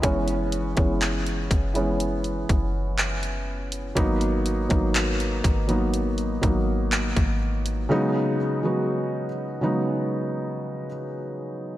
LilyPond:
<<
  \new Staff \with { instrumentName = "Felt piano" } { \time 4/4 \key gis \minor \tempo 4 = 61 <e gis b cis'>8 r16 <e gis b cis'>8. r16 <e gis b cis'>4~ <e gis b cis'>16 r4 | <fis ais b dis'>8 r16 <fis ais b dis'>8. r16 <fis ais b dis'>8 r16 <fis ais b dis'>4 r8 | <cis fis gis b dis'>8 r16 <cis fis gis b fis'>8. r16 <cis fis gis b dis'>4~ <cis fis gis b dis'>16 r4 | }
  \new Staff \with { instrumentName = "808-style bass" } { \clef bass \time 4/4 \key gis \minor fis,,8. fis,,8. fis,,4 fis,,4. | gis,,8. gis,,8. gis,,4 gis,,8. gis,,8. | r1 | }
  \new DrumStaff \with { instrumentName = "Drums" } \drummode { \time 4/4 <hh bd>16 hh16 hh16 <hh bd>16 <hc hh>16 hh16 <hh bd>16 hh16 hh16 hh16 <hh bd>8 <hc hh>16 hh8 hh16 | <hh bd>16 hh16 hh16 <hh bd>16 <hc hh>16 hh16 <hh bd>16 hh16 hh16 hh16 <hh bd>8 <hc hh>16 <hh bd>8 hh16 | r4 r4 r4 r4 | }
>>